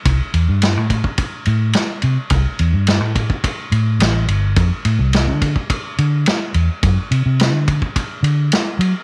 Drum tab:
RD |x-x-x-x-x-x-x-x-|x-x-x-x-x-x-x-x-|x-x-x-x-x-x-x-x-|x-x-x-x-x-x-x-x-|
SD |----o-------o---|----o-------o---|----o-------o---|----o-------o---|
BD |o-----ooo-------|o-----ooo-------|o-----ooo-------|o-----ooo-------|